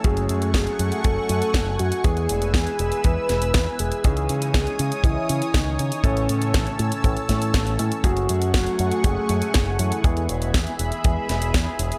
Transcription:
0.04 F#1 F#3 A3 C#4 G#4 F#5 G#5 C#6, kick, closed hi-hat
0.17 closed hi-hat
0.29 F#2, closed hi-hat
0.42 closed hi-hat
0.54 F#1 G#4, kick, snare, closed hi-hat
0.67 closed hi-hat
0.79 F#2, closed hi-hat
0.92 closed hi-hat
1.04 F#1 F#3 A3 C#4 A4 G#5, kick, closed hi-hat
1.29 F#2, closed hi-hat
1.42 closed hi-hat
1.54 F#1, kick, snare, closed hi-hat
1.79 F#2 F#4, closed hi-hat
1.92 closed hi-hat
2.04 E2 E3 G#3 B3 G#4 B4 E6, kick, closed hi-hat
2.17 closed hi-hat
2.29 E1, closed hi-hat
2.42 closed hi-hat
2.54 E2 G#4, kick, snare, closed hi-hat
2.67 closed hi-hat
2.79 E1, closed hi-hat
2.92 closed hi-hat
3.04 E2 E3 G#3 B3 G#4 B4, kick, closed hi-hat
3.29 E1, snare, closed hi-hat
3.42 closed hi-hat
3.54 E2, kick, snare, closed hi-hat
3.79 E1 G#4, closed hi-hat
3.92 closed hi-hat
4.04 C#2 E3 C#4 D#4 G#4 C#5 G#5 D#6, kick, closed hi-hat
4.17 closed hi-hat
4.29 C#3, closed hi-hat
4.42 closed hi-hat
4.54 C#2 G#4, kick, snare, closed hi-hat
4.67 closed hi-hat
4.79 C#3, closed hi-hat
4.92 closed hi-hat
5.04 C#2 E3 C#4 E4 G#4 D#5, kick, closed hi-hat
5.29 C#3, closed hi-hat
5.42 closed hi-hat
5.54 C#2 D#4, kick, snare, closed hi-hat
5.79 C#3, closed hi-hat
5.92 closed hi-hat
6.04 A1 A2 E3 A3 C#4 A4 A5 E6, kick, closed hi-hat
6.17 closed hi-hat
6.29 A2, closed hi-hat
6.42 closed hi-hat
6.54 A1, kick, snare, closed hi-hat
6.67 closed hi-hat
6.79 A2, closed hi-hat
6.92 closed hi-hat
7.04 A1 A2 E3 A3 C#4 A4, kick, closed hi-hat
7.17 closed hi-hat
7.29 A2 E3 A3 C#4 A4, kick, snare, closed hi-hat
7.42 closed hi-hat
7.54 A1, kick, snare, closed hi-hat
7.67 closed hi-hat
7.79 A2 E3 A3 C#4 A4, closed hi-hat
7.92 closed hi-hat
8.04 F#1 F#3 A3 C#4 F#4 G#4 F#5 G#5 C#6, kick, closed hi-hat
8.17 closed hi-hat
8.29 F#2, closed hi-hat
8.42 closed hi-hat
8.54 F#1 F#4, kick, snare, closed hi-hat
8.67 closed hi-hat
8.79 F#2, closed hi-hat
8.92 closed hi-hat
9.04 F#1 F#3 A3 C#4 G#4, kick, closed hi-hat
9.29 F#2, closed hi-hat
9.42 closed hi-hat
9.54 F#1, kick, snare, closed hi-hat
9.79 F#2 E4, closed hi-hat
9.92 closed hi-hat
10.04 E2 E3 G#3 B3 G#4 E5 B5, kick, closed hi-hat
10.17 closed hi-hat
10.29 E1, closed hi-hat
10.42 closed hi-hat
10.54 E2, kick, snare, closed hi-hat
10.67 closed hi-hat
10.79 E1, closed hi-hat
10.92 closed hi-hat
11.04 E2 E3 G#3 B3 G#4, kick, closed hi-hat
11.29 E1, snare, closed hi-hat
11.42 closed hi-hat
11.54 E2, kick, snare, closed hi-hat
11.79 E1, closed hi-hat
11.92 closed hi-hat

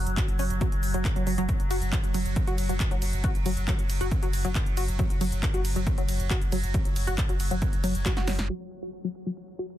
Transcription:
Already playing: F#3
0.06 F#1, closed hi-hat, shaker
0.17 F#4, kick, clap, closed hi-hat, shaker
0.28 F#1, closed hi-hat, shaker
0.39 F#1 C#4, open hi-hat, shaker
0.50 F#1, closed hi-hat, shaker
0.61 F#3, kick, closed hi-hat, shaker
0.72 F#1, closed hi-hat, shaker
0.83 F#1, open hi-hat, shaker
0.94 F#1 F#3, closed hi-hat, shaker
1.05 kick, clap, closed hi-hat, shaker
1.16 F#1 F#3, closed hi-hat, shaker
1.27 F#1 F#3, open hi-hat, shaker
1.38 F#1 F#3, closed hi-hat, shaker
1.49 kick, closed hi-hat, shaker
1.60 F#1, closed hi-hat, shaker
1.71 F#1 F#4, open hi-hat, ride, shaker
1.82 F#1, closed hi-hat, shaker
1.92 F#3, kick, clap, closed hi-hat, shaker
2.04 F#1, closed hi-hat, shaker
2.14 F#1 F#3, open hi-hat, ride, shaker
2.26 F#1, closed hi-hat, shaker
2.36 kick, closed hi-hat, shaker
2.47 F#1 F#4, closed hi-hat, shaker
2.58 F#1, open hi-hat, ride, shaker
2.69 F#1 F#3, closed hi-hat, shaker
2.80 kick, clap, closed hi-hat, shaker
2.91 F#1 F#3, closed hi-hat, shaker
3.02 F#1, open hi-hat, ride, shaker
3.13 F#1, closed hi-hat, shaker
3.24 F#4, kick, closed hi-hat, shaker
3.35 F#1, closed hi-hat, shaker
3.46 F#1 F#3, open hi-hat, ride, shaker
3.57 F#1, closed hi-hat, shaker
3.68 F#3, kick, clap, closed hi-hat, shaker
3.79 F#1, closed hi-hat, shaker
3.90 F#1, open hi-hat, ride, shaker
4.01 F#1 F#4, closed hi-hat, shaker
4.11 kick, closed hi-hat, shaker
4.23 F#1 F#3, closed hi-hat, shaker
4.33 F#1, open hi-hat, ride, shaker
4.45 F#1 F#3, closed hi-hat, shaker
4.55 kick, clap, closed hi-hat, shaker
4.66 F#1, closed hi-hat, shaker
4.77 F#1 F#4, open hi-hat, ride, shaker
4.88 F#1, closed hi-hat, shaker
4.99 F#3, kick, closed hi-hat, shaker
5.10 F#1, closed hi-hat, shaker
5.21 F#1 F#3, open hi-hat, ride, shaker
5.32 F#1, closed hi-hat, shaker
5.43 kick, clap, closed hi-hat, shaker
5.54 F#1 F#4, closed hi-hat, shaker
5.65 F#1, open hi-hat, ride, shaker
5.76 F#1 F#3, closed hi-hat, shaker
5.87 kick, closed hi-hat, shaker
5.98 F#1 F#3, closed hi-hat, shaker
6.08 F#1, open hi-hat, ride, shaker
6.20 F#1, closed hi-hat, shaker
6.30 F#4, kick, clap, closed hi-hat, shaker
6.42 F#1, closed hi-hat, shaker
6.52 F#1 F#3, open hi-hat, ride, shaker
6.63 F#1, closed hi-hat, shaker
6.74 F#3, kick, closed hi-hat, shaker
6.85 F#1, closed hi-hat, shaker
6.96 F#1, open hi-hat, ride, shaker
7.07 F#1 F#4, closed hi-hat, shaker
7.18 kick, clap, closed hi-hat, shaker
7.29 F#1 F#3, closed hi-hat, shaker
7.40 F#1, open hi-hat, ride, shaker
7.51 F#1 F#3, closed hi-hat, shaker
7.62 kick, closed hi-hat, shaker
7.73 F#1, closed hi-hat, shaker
7.84 F#1 F#3, open hi-hat, ride, shaker
7.95 F#1, closed hi-hat, shaker
8.06 F#4, kick, snare, clap, closed hi-hat, shaker
8.17 F#1 F#4, snare, closed hi-hat, shaker
8.28 F#1 F#3, snare, open hi-hat, ride, shaker
8.39 F#1, snare, closed hi-hat, shaker
8.49 F#3, closed hi-hat
8.61 closed hi-hat
8.71 closed hi-hat
8.82 F#4, closed hi-hat
8.93 closed hi-hat
9.04 F#3, closed hi-hat
9.15 closed hi-hat
9.26 F#3, closed hi-hat
9.37 closed hi-hat
9.48 closed hi-hat
9.59 F#4, closed hi-hat
9.70 closed hi-hat

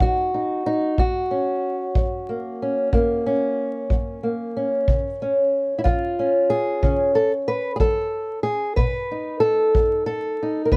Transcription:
Already playing: D#4
0.00 F#3 F#4, kick
0.34 D#4
0.66 D#4
0.98 F#2 F#4, kick
1.31 C#4
1.95 F#3, kick
2.29 A#3
2.62 C#4
2.93 F#2 A#3, kick
3.26 C#4
3.90 F#3, kick
4.23 A#3
4.57 C#4
4.88 C#3, kick
5.22 C#4
5.79 E4
5.84 F3 F4, kick
6.19 C#4
6.50 G#4
6.83 C#3 C#4, kick
7.15 A4
7.48 B4
7.76 G#4
7.80 F3 A4, kick
8.43 G#4
8.76 B2 B4, kick
9.11 D#4
9.40 A4
9.75 F#3, kick
10.06 A4
10.43 D#4
10.65 A#4
10.72 B2 B4, kick

